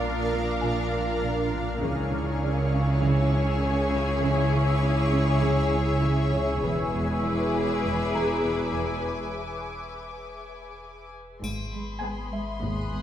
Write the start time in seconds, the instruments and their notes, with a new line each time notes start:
Already playing: double bass section A#1, sub bass A#1, cello section A#2, viola section D4 F4, ambient pad D4 A#4 F5, violin section A#4 F5 D6 D#6 A6
0.04 cello section A#3
0.34 cello section A#3
0.61 cello section A#2, music box G#5
0.93 cello section A#3
1.23 cello section A#2
1.53 cello section A#2
1.82 sub bass C#2, double bass section C#2, cello section C#3, viola section C#4 E4, ambient pad G#4 C#5 E5, violin section G#4 C#5 G#5 C#6
2.13 cello section C#3
2.43 cello section C#4
2.73 cello section C#4
3.03 cello section C#3
3.34 cello section C#4
3.63 cello section C#3
3.92 cello section C#3
4.22 cello section C#3
4.53 cello section C#3
4.73 violin section D6
4.83 cello section C#4
5.13 cello section C#4
5.42 cello section C#3
5.72 cello section C#4
6.02 cello section C#3
6.33 cello section C#3
6.62 sub bass E1, double bass section E1, cello section E2, viola section G#3 E4, ambient pad G#4 B4 E5, violin section G#4 B4 G#5, music box B4
6.94 cello section E2
7.24 cello section E3, violin section D6
7.55 cello section E3
7.84 cello section E2
8.14 cello section E3, music box G#4 A#5
8.43 cello section E2
8.73 cello section E2
11.42 double bass section G#1, sub bass G#1, cello section G#2, ambient pad B3 G#4 D#6, violin section B5 C6, triangle
11.74 cello section G#3
12.03 cello section G#3, viola section B3, violin section G#4 G#5
12.33 cello section G#3, music box E5
12.62 cello section D#2 G#2, double bass section D#2, violin section F#6
12.93 cello section G#2